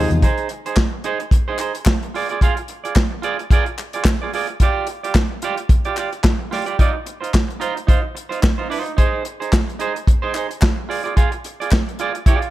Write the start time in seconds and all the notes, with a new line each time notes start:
Already playing: C3 D#3 F3 G#3 D#4 G#4 F5 D#6
0.11 E2, closed hi-hat
0.22 D#4 G#4 C5, kick, closed hi-hat
0.38 closed hi-hat
0.49 muted clean electric guitar stroke, closed hi-hat
0.66 D#4 G#4 C5, closed hi-hat
0.76 kick, snare, clap
0.93 muted clean electric guitar stroke
1.04 D#4 G#4 C5, closed hi-hat
1.20 muted clean electric guitar stroke, closed hi-hat
1.31 muted clean electric guitar stroke, kick, closed hi-hat
1.48 D#4 G#4 C5
1.59 D#4 G#4 C5, clap, closed hi-hat
1.75 muted clean electric guitar stroke, closed hi-hat
1.85 muted clean electric guitar stroke, kick, snare, clap
2.02 muted clean electric guitar stroke, closed hi-hat
2.14 F4 G#4 D5, open hi-hat
2.29 F4 G#4 D5, closed hi-hat
2.41 F4 G#4 F5, kick, closed hi-hat
2.57 muted clean electric guitar stroke, closed hi-hat
2.68 muted clean electric guitar stroke, closed hi-hat
2.84 F4 G#4 D5, closed hi-hat
2.96 kick, snare, clap
3.11 muted clean electric guitar stroke
3.22 F4 G#4 D5, closed hi-hat
3.39 muted clean electric guitar stroke, closed hi-hat
3.51 F4 G#4 D5, kick, closed hi-hat
3.66 muted clean electric guitar stroke, closed hi-hat
3.78 muted clean electric guitar stroke, clap, closed hi-hat
3.93 F4 G#4 D5, closed hi-hat
4.05 kick, snare, clap
4.06 muted clean electric guitar stroke, clap
4.22 F4 G#4 D5
4.33 F4 G#4 D5, open hi-hat
4.47 muted clean electric guitar stroke, closed hi-hat
4.60 F4 G4 D5, kick, closed hi-hat
4.87 muted clean electric guitar stroke, closed hi-hat
5.03 F4 G4 D5, closed hi-hat
5.15 kick, snare, clap
5.31 muted clean electric guitar stroke
5.42 F4 G4 D5, closed hi-hat
5.57 muted clean electric guitar stroke, closed hi-hat
5.69 muted clean electric guitar stroke, kick, closed hi-hat
5.85 F4 G4 D5, closed hi-hat
5.97 F4 G4 D5, clap, closed hi-hat
6.13 muted clean electric guitar stroke, closed hi-hat
6.24 muted clean electric guitar stroke, kick, snare, clap
6.39 muted clean electric guitar stroke
6.51 F4 G4 D5, snare, open hi-hat
6.66 F4 G4 D5, closed hi-hat
6.79 D#4 F4 D5, kick, closed hi-hat
6.94 muted clean electric guitar stroke
7.06 muted clean electric guitar stroke, closed hi-hat
7.21 D#4 F4 C5, closed hi-hat
7.34 kick, snare, clap
7.48 muted clean electric guitar stroke, closed hi-hat
7.60 D#4 F4 C5, closed hi-hat
7.76 muted clean electric guitar stroke, closed hi-hat
7.87 D#4 F4 C5, kick, closed hi-hat
8.02 muted clean electric guitar stroke
8.15 muted clean electric guitar stroke, closed hi-hat
8.29 D#4 F4 C5, closed hi-hat
8.42 muted clean electric guitar stroke, kick, snare, clap
8.58 D#4 F4 C5
8.70 D#4 F4 C5, open hi-hat
8.85 muted clean electric guitar stroke, closed hi-hat
8.97 D#4 G#4 C5, kick, closed hi-hat
9.25 muted clean electric guitar stroke, closed hi-hat
9.40 D#4 G#4 C5, closed hi-hat
9.53 kick, snare, clap
9.68 muted clean electric guitar stroke, closed hi-hat
9.79 D#4 G#4 C5, closed hi-hat
9.95 muted clean electric guitar stroke, closed hi-hat
10.07 muted clean electric guitar stroke, kick, closed hi-hat
10.22 D#4 G#4 C5
10.34 D#4 G#4 C5, clap, closed hi-hat
10.49 muted clean electric guitar stroke, closed hi-hat
10.61 muted clean electric guitar stroke, kick, snare, clap
10.76 muted clean electric guitar stroke
10.89 F4 G#4 D5, open hi-hat
11.04 F4 G#4 D5, closed hi-hat
11.16 F4 G#4 F5, kick, closed hi-hat
11.32 muted clean electric guitar stroke, closed hi-hat
11.44 muted clean electric guitar stroke, closed hi-hat
11.60 F4 G#4 D5, closed hi-hat
11.71 kick, snare, clap
11.88 muted clean electric guitar stroke, closed hi-hat
11.99 F4 G#4 D5, closed hi-hat
12.15 muted clean electric guitar stroke, closed hi-hat
12.26 F4 G#4 D5, kick, closed hi-hat
12.41 muted clean electric guitar stroke, closed hi-hat